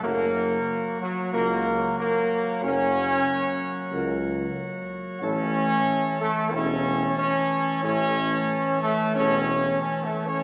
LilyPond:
<<
  \new Staff \with { instrumentName = "Trumpet section" } { \time 4/4 \key a \lydian \tempo 4 = 92 ais'4. fis'8 ais'4 ais'4 | cis''2~ cis''8 r4. | cis''4. a'8 cis''4 cis''4 | cis''4. a'8 cis''4 \tuplet 3/2 { cis''8 a'8 cis''8 } | }
  \new Staff \with { instrumentName = "French horn section" } { \time 4/4 \key a \lydian <fis' ais'>8 r4. <fis' ais'>8 r4. | <fis' ais'>8 r4. <fis' ais'>8 r4. | <e' a'>8 r4. <e' a'>8 r4. | <e' a'>8 r4. <e' a'>8 r4. | }
  \new Staff \with { instrumentName = "Pipe organ" } { \time 4/4 \key a \lydian <fis ais fis' cis''>1~ | <fis ais fis' cis''>1 | <e a a' cis''>1~ | <e a a' cis''>1 | }
  \new Staff \with { instrumentName = "Trombone section" } { \time 4/4 \key a \lydian ais4. fis8 ais4 ais4 | cis'2~ cis'8 r4. | cis'4. a8 cis'4 cis'4 | cis'4. a8 cis'4 \tuplet 3/2 { cis'8 a8 cis'8 } | }
  \new Staff \with { instrumentName = "Tuba" } { \clef bass \time 4/4 \key a \lydian fis,,4 r4 cis,4 r4 | fis,,4 r4 cis,4 r4 | a,,4 r4 e,,4 r4 | a,,4 r4 e,,4 r4 | }
>>